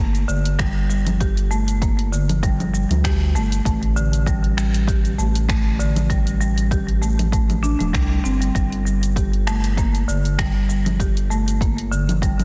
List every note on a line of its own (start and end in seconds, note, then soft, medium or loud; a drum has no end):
0.00 0.24 G1 loud
0.00 0.27 A#3 medium
0.15 closed hi-hat soft
0.15 shaker soft
0.28 2.85 G1 medium
0.28 0.58 D3 medium
0.28 shaker medium
0.45 closed hi-hat soft
0.45 shaker soft
0.59 0.75 G3 loud
0.59 finger snap medium
0.59 kick loud
0.59 closed hi-hat medium
0.59 shaker soft
0.90 1.19 G3 medium
0.90 shaker medium
1.07 closed hi-hat soft
1.07 low conga medium
1.07 shaker soft
1.20 1.30 G4 medium
1.20 kick loud
1.20 closed hi-hat medium
1.20 shaker soft
1.37 closed hi-hat soft
1.37 shaker soft
1.51 1.67 A3 medium
1.51 shaker medium
1.68 closed hi-hat soft
1.68 shaker soft
1.82 2.11 A#3 medium
1.82 kick loud
1.82 closed hi-hat medium
1.82 shaker soft
1.99 closed hi-hat soft
2.12 2.42 D3 medium
2.12 shaker medium
2.29 closed hi-hat soft
2.29 low conga medium
2.29 shaker soft
2.43 2.59 G3 medium
2.43 kick loud
2.43 closed hi-hat medium
2.43 shaker soft
2.60 closed hi-hat soft
2.60 low conga medium
2.60 shaker soft
2.74 3.03 G3 medium
2.74 shaker medium
2.90 3.36 D2 medium
2.90 closed hi-hat soft
2.90 low conga medium
2.90 shaker soft
3.04 3.14 G4 medium
3.04 finger snap medium
3.04 kick loud
3.04 closed hi-hat medium
3.04 shaker soft
3.35 3.60 G1 loud
3.35 3.51 A3 medium
3.35 shaker medium
3.52 closed hi-hat soft
3.52 shaker soft
3.65 5.14 A1 loud
3.65 3.95 A3 medium
3.65 kick loud
3.65 closed hi-hat medium
3.65 shaker soft
3.83 closed hi-hat soft
3.96 4.25 D3 medium
3.96 shaker medium
4.13 closed hi-hat soft
4.13 shaker soft
4.26 4.42 G3 loud
4.26 kick loud
4.26 closed hi-hat soft
4.26 shaker soft
4.44 closed hi-hat soft
4.58 4.87 G3 medium
4.58 finger snap medium
4.58 shaker medium
4.74 closed hi-hat soft
4.74 shaker soft
4.88 4.97 G4 medium
4.88 kick loud
4.88 closed hi-hat medium
4.88 shaker soft
5.05 closed hi-hat soft
5.05 shaker soft
5.18 7.75 A1 medium
5.18 5.34 A3 medium
5.18 shaker medium
5.35 closed hi-hat soft
5.35 shaker soft
5.49 5.78 A3 medium
5.49 finger snap medium
5.49 kick loud
5.49 closed hi-hat medium
5.49 shaker soft
5.79 6.09 D3 medium
5.79 shaker medium
5.96 closed hi-hat soft
5.96 low conga medium
5.96 shaker soft
6.10 6.26 G3 loud
6.10 kick medium
6.10 closed hi-hat medium
6.10 shaker soft
6.27 closed hi-hat soft
6.27 shaker soft
6.40 6.70 G3 medium
6.40 shaker medium
6.58 closed hi-hat soft
6.58 shaker soft
6.71 6.81 G4 medium
6.71 kick loud
6.71 closed hi-hat soft
6.71 shaker soft
6.88 closed hi-hat soft
7.02 7.18 A3 medium
7.02 shaker medium
7.19 closed hi-hat soft
7.19 low conga medium
7.19 shaker soft
7.32 7.48 A3 medium
7.32 kick loud
7.32 closed hi-hat medium
7.32 shaker soft
7.50 closed hi-hat soft
7.50 low conga medium
7.50 shaker soft
7.63 7.79 D4 loud
7.63 shaker medium
7.79 7.93 D#1 medium
7.79 7.92 A3 medium
7.79 closed hi-hat soft
7.79 low conga medium
7.79 shaker soft
7.93 8.19 C2 medium
7.93 8.09 G3 medium
7.93 finger snap medium
7.93 kick loud
7.93 closed hi-hat soft
7.93 shaker soft
8.10 8.24 G3 medium
8.24 8.50 G1 loud
8.24 8.40 C4 medium
8.24 shaker medium
8.41 8.54 G3 medium
8.41 closed hi-hat soft
8.41 shaker soft
8.55 10.04 G1 loud
8.55 8.71 G3 loud
8.55 kick loud
8.55 closed hi-hat medium
8.55 shaker soft
8.72 closed hi-hat soft
8.86 9.15 G3 medium
8.86 shaker medium
9.03 closed hi-hat soft
9.03 shaker soft
9.16 9.26 G4 medium
9.16 kick medium
9.16 closed hi-hat medium
9.16 shaker soft
9.33 closed hi-hat soft
9.47 9.63 A3 medium
9.47 finger snap medium
9.47 shaker medium
9.64 closed hi-hat soft
9.64 shaker soft
9.77 10.07 A#3 medium
9.77 kick loud
9.77 closed hi-hat soft
9.77 shaker soft
9.95 closed hi-hat soft
9.95 shaker soft
10.08 12.44 G1 medium
10.08 10.37 D3 medium
10.08 shaker medium
10.25 closed hi-hat soft
10.25 shaker soft
10.39 10.55 G3 loud
10.39 finger snap medium
10.39 kick loud
10.39 closed hi-hat soft
10.39 shaker soft
10.69 10.99 G3 medium
10.69 shaker medium
10.86 closed hi-hat soft
10.86 low conga medium
10.86 shaker soft
11.00 11.10 G4 medium
11.00 kick medium
11.00 closed hi-hat medium
11.00 shaker soft
11.17 closed hi-hat soft
11.17 shaker soft
11.30 11.46 A3 medium
11.30 shaker medium
11.48 closed hi-hat soft
11.48 shaker soft
11.61 11.90 A#3 medium
11.61 kick loud
11.61 closed hi-hat medium
11.61 shaker soft
11.78 closed hi-hat soft
11.91 12.21 D3 medium
11.91 shaker medium
12.09 closed hi-hat soft
12.09 low conga medium
12.09 shaker soft
12.22 12.38 G3 medium
12.22 kick loud
12.22 closed hi-hat medium
12.22 shaker soft
12.39 closed hi-hat soft
12.39 low conga medium
12.39 shaker soft